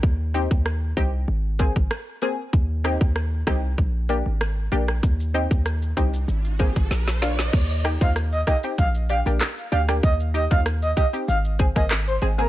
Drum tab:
CC |----------------|----------------|----------------|x---------------|
HH |--x---x---x---x-|--x---x---x---x-|--x---x---x---x-|--x---x---x---x-|
SH |----------------|----------------|xxxxxxxxxxxxxxxx|xxxxxxxxxxxxxxxx|
CP |----------------|----------------|----------------|------------x---|
SD |----r-------r---|--r-r-r-----r--r|----r-------oooo|--r-r-r-----r--r|
BD |o--o--o---oo----|o--o--o-o-------|o--o--o---oo----|o--o--o-o-------|

CC |----------------|
HH |--x---x---x---x-|
SH |xxxxxxxxxxxxxxxx|
CP |------------x---|
SD |----r-------r---|
BD |o--o--o---oo----|